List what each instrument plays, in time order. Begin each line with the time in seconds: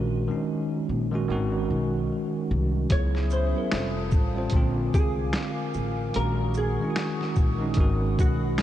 Already playing: upright bass A#1, tine electric piano D#3 G#3 C#4 D4 F#4 A#4
0.28 tine electric piano D#3 G#3 C#4 D#4
0.89 upright bass A#1
1.12 tine electric piano D#3 G#3 C#4 F#4
1.28 upright bass G#1, tine electric piano D#3 G#3 C#4 F#4
1.70 upright bass B1
2.51 upright bass C2
2.89 upright bass C#2, tine electric piano F#3 B3 E4 G#4, ambient pad C#4 E5 B5 D#6, hollow-body jazz guitar C#5, kick, closed hi-hat
3.15 snare
3.30 hollow-body jazz guitar C5, shaker
3.54 tine electric piano F#3 B3 E4 A#4
3.71 upright bass F1, tine electric piano G3 C4 F4 A4, ambient pad C5 F5 A5 D#6, finger snap, snare, closed hi-hat
4.11 upright bass A1, kick, shaker
4.35 tine electric piano G3 C4 F4 C5
4.50 upright bass A#1, tine electric piano D3, ambient pad A#4 F5 G#5 D6, kick, closed hi-hat
4.54 tine electric piano G#3 C4 F4
4.94 hollow-body jazz guitar G#4, kick, shaker
5.33 finger snap, snare, closed hi-hat
5.74 upright bass A1, shaker
6.13 upright bass A#1, tine electric piano D#3 G#3 C#4 F#4, hollow-body jazz guitar A#4, ambient pad F#5 C#6 D#6, closed hi-hat
6.54 hollow-body jazz guitar G#4, shaker
6.80 tine electric piano D#3 G#3 C#4
6.84 tine electric piano E4
6.90 tine electric piano F#4
6.96 finger snap, snare, closed hi-hat
7.21 snare
7.36 upright bass A#1, kick, shaker
7.59 tine electric piano D#3 G#3 C#4 D#4
7.74 upright bass G#1, tine electric piano D#3 G#3, ambient pad F#5 B5, kick, closed hi-hat
7.78 tine electric piano C#4 F#4, ambient pad G#4
8.19 upright bass B1, hollow-body jazz guitar F#4, kick, shaker
8.58 finger snap, snare, closed hi-hat